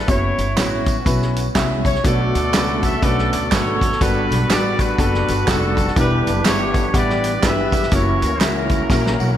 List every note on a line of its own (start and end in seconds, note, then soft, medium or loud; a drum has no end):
0.07 0.34 F#1 loud
0.07 0.45 B3 medium
0.07 0.45 C#4 medium
0.07 0.45 E4 medium
0.07 1.02 E4 medium
0.07 0.45 F#4 medium
0.07 0.46 C#5 medium
0.07 0.54 C#5 medium
0.07 kick loud
0.07 closed hi-hat medium
0.07 tambourine medium
0.38 0.54 G1 medium
0.38 closed hi-hat medium
0.38 tambourine medium
0.56 0.99 A1 medium
0.56 0.94 B3 medium
0.56 1.51 B3 medium
0.56 0.95 C#4 medium
0.56 1.51 C#4 medium
0.56 0.94 E4 medium
0.56 0.95 F#4 medium
0.56 1.54 F#4 medium
0.56 0.95 C#5 medium
0.56 snare loud
0.56 clap medium
0.56 closed hi-hat medium
0.56 tambourine loud
0.86 kick medium
0.86 closed hi-hat medium
0.86 tambourine medium
1.05 1.48 B1 medium
1.05 1.43 B3 medium
1.05 1.44 C#4 medium
1.05 1.44 E4 medium
1.05 1.44 F#4 medium
1.05 1.44 B4 medium
1.05 kick loud
1.05 closed hi-hat medium
1.05 tambourine medium
1.22 snare soft
1.36 closed hi-hat medium
1.36 tambourine medium
1.55 1.97 C2 loud
1.55 1.93 B3 medium
1.55 1.93 C#4 medium
1.55 1.93 E4 medium
1.55 1.93 F#4 medium
1.55 1.93 E5 loud
1.55 kick medium
1.55 snare loud
1.55 clap medium
1.55 closed hi-hat medium
1.55 tambourine medium
1.85 2.04 C#5 loud
1.85 kick loud
1.85 closed hi-hat medium
1.85 tambourine medium
1.95 snare soft
2.04 2.30 B1 medium
2.04 2.79 B2 medium
2.04 3.99 B2 medium
2.04 2.42 A3 medium
2.04 3.99 A3 medium
2.04 2.42 B3 medium
2.04 5.93 B3 medium
2.04 2.42 D4 medium
2.04 2.42 F#4 medium
2.04 2.99 F#4 medium
2.04 5.93 A4 medium
2.04 2.99 A4 medium
2.04 2.42 B4 medium
2.04 2.84 D5 loud
2.04 kick loud
2.04 closed hi-hat medium
2.04 tambourine medium
2.35 2.51 D2 loud
2.35 closed hi-hat medium
2.35 tambourine medium
2.54 2.96 C#2 medium
2.54 2.91 A3 medium
2.54 2.91 C#4 medium
2.54 2.92 D4 medium
2.54 2.92 F#4 medium
2.54 2.92 B4 medium
2.54 snare loud
2.54 clap loud
2.54 closed hi-hat medium
2.54 tambourine loud
2.83 3.02 E5 loud
2.83 kick medium
2.83 closed hi-hat medium
2.83 tambourine medium
3.02 3.28 B1 loud
3.02 3.40 A3 medium
3.02 3.40 C#4 medium
3.02 3.40 D4 medium
3.02 3.51 F#4 medium
3.02 3.40 F#4 medium
3.02 3.51 A4 medium
3.02 3.40 B4 medium
3.02 3.31 D5 loud
3.02 kick loud
3.02 closed hi-hat medium
3.02 tambourine medium
3.18 snare soft
3.32 3.49 D2 medium
3.32 3.50 D5 loud
3.32 closed hi-hat medium
3.32 tambourine medium
3.52 3.93 G#1 medium
3.52 3.89 A3 medium
3.52 3.89 D4 medium
3.52 3.98 F#4 medium
3.52 3.90 F#4 medium
3.52 3.97 A4 medium
3.52 3.90 B4 medium
3.52 3.89 C#5 medium
3.52 4.01 C#5 loud
3.52 kick medium
3.52 snare loud
3.52 clap loud
3.52 closed hi-hat loud
3.52 tambourine medium
3.81 kick loud
3.81 closed hi-hat medium
3.81 tambourine medium
3.92 snare soft
4.00 4.26 G1 medium
4.00 4.76 G2 medium
4.00 5.94 G3 medium
4.00 4.38 G3 medium
4.00 4.08 A#3 medium
4.00 4.79 D4 medium
4.00 4.38 D4 medium
4.00 5.94 F#4 medium
4.00 4.79 F#4 medium
4.00 4.39 F#4 medium
4.00 4.39 A4 medium
4.00 4.50 B4 loud
4.00 kick loud
4.00 closed hi-hat medium
4.00 tambourine medium
4.07 4.41 B3 medium
4.31 4.47 B1 medium
4.31 closed hi-hat medium
4.31 tambourine medium
4.49 4.91 A1 medium
4.49 4.87 G3 medium
4.49 4.87 B3 medium
4.49 4.88 D4 medium
4.49 4.88 F#4 medium
4.49 4.58 A#4 medium
4.49 4.80 D5 loud
4.49 snare loud
4.49 clap medium
4.49 closed hi-hat medium
4.49 tambourine loud
4.57 4.91 B4 medium
4.79 5.48 D4 medium
4.79 5.48 F#4 medium
4.79 5.48 B4 loud
4.79 kick medium
4.79 closed hi-hat medium
4.79 tambourine medium
4.98 5.24 F#1 loud
4.98 5.36 G3 medium
4.98 5.36 B3 medium
4.98 5.36 D4 medium
4.98 5.36 F#4 medium
4.98 5.36 A4 medium
4.98 kick loud
4.98 closed hi-hat medium
4.98 tambourine medium
5.14 snare soft
5.28 5.45 G1 loud
5.28 closed hi-hat medium
5.28 tambourine medium
5.47 5.89 F1 medium
5.47 5.85 G3 medium
5.47 5.85 B3 medium
5.47 5.85 D4 medium
5.47 5.94 D4 medium
5.47 5.85 F#4 medium
5.47 5.94 F#4 medium
5.47 5.85 A4 medium
5.47 5.98 A4 loud
5.47 kick medium
5.47 snare loud
5.47 clap medium
5.47 closed hi-hat loud
5.47 tambourine medium
5.77 kick loud
5.77 closed hi-hat medium
5.77 tambourine medium
5.87 snare soft
5.96 6.22 E1 loud
5.96 6.71 E3 medium
5.96 9.37 E3 medium
5.96 6.34 G3 medium
5.96 6.34 B3 medium
5.96 7.90 B3 medium
5.96 6.34 D4 medium
5.96 7.91 D4 medium
5.96 6.91 D4 medium
5.96 6.34 E4 medium
5.96 7.90 G4 medium
5.96 6.45 G4 medium
5.96 6.04 A#4 medium
5.96 6.43 B4 loud
5.96 kick loud
5.96 closed hi-hat medium
5.96 tambourine medium
6.02 6.37 B4 medium
6.26 6.43 F#1 medium
6.26 closed hi-hat medium
6.26 tambourine medium
6.45 6.87 G1 medium
6.45 6.83 G3 medium
6.45 6.83 B3 medium
6.45 6.83 D4 medium
6.45 6.83 E4 medium
6.45 6.95 G4 medium
6.45 6.83 B4 medium
6.45 6.92 C#5 loud
6.45 snare loud
6.45 clap loud
6.45 closed hi-hat medium
6.45 tambourine loud
6.74 kick loud
6.74 closed hi-hat medium
6.74 tambourine medium
6.93 7.36 A1 loud
6.93 7.31 G3 medium
6.93 7.32 B3 medium
6.93 7.32 D4 medium
6.93 7.32 E4 medium
6.93 7.43 G4 medium
6.93 7.44 B4 medium
6.93 7.32 F#5 medium
6.93 kick loud
6.93 closed hi-hat medium
6.93 tambourine medium
6.97 7.45 D5 loud
7.10 snare soft
7.24 closed hi-hat medium
7.24 tambourine medium
7.43 7.85 G1 medium
7.43 7.50 F#3 medium
7.43 7.81 B3 medium
7.43 7.81 D4 medium
7.43 7.81 E4 medium
7.43 7.89 G4 medium
7.43 7.81 B4 medium
7.43 7.90 B4 medium
7.43 7.93 E5 loud
7.43 kick medium
7.43 snare loud
7.43 clap medium
7.43 closed hi-hat loud
7.43 tambourine medium
7.49 7.84 G3 medium
7.72 kick loud
7.72 closed hi-hat medium
7.72 tambourine medium
7.83 snare soft
7.91 8.17 F#1 loud
7.91 7.99 A3 medium
7.91 9.37 A#3 medium
7.91 9.37 C#4 medium
7.91 8.30 C#4 medium
7.91 8.40 E4 medium
7.91 8.30 E4 medium
7.91 9.37 F#4 medium
7.91 8.30 F#4 medium
7.91 8.41 A#4 medium
7.91 8.41 C#5 loud
7.91 8.30 C#5 medium
7.91 kick loud
7.91 closed hi-hat medium
7.91 tambourine medium
7.98 8.32 A#3 medium
8.22 8.38 D2 medium
8.22 closed hi-hat medium
8.22 tambourine medium
8.41 8.83 C#2 loud
8.41 8.79 A#3 medium
8.41 8.79 C#4 medium
8.41 9.37 C#4 medium
8.41 9.37 E4 medium
8.41 8.79 E4 medium
8.41 8.79 F#4 medium
8.41 9.37 A#4 medium
8.41 8.79 E5 medium
8.41 snare loud
8.41 clap loud
8.41 closed hi-hat medium
8.41 tambourine loud
8.69 kick medium
8.69 closed hi-hat medium
8.69 tambourine medium
8.90 9.15 A#1 medium
8.90 9.28 A#3 medium
8.90 9.28 C#4 medium
8.90 9.28 E4 medium
8.90 9.28 F#4 medium
8.90 9.28 A#4 medium
8.90 kick loud
8.90 snare medium
8.90 tambourine medium
9.06 snare medium
9.20 9.36 B1 medium
9.20 9.37 F#5 medium
9.20 tambourine medium